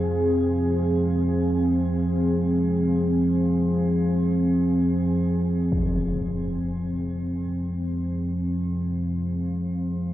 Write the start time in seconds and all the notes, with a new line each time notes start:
Already playing: F2 F3 C4 G#4 F5
5.72 F2 F3 C4, impact
6.25 G#4
8.28 F5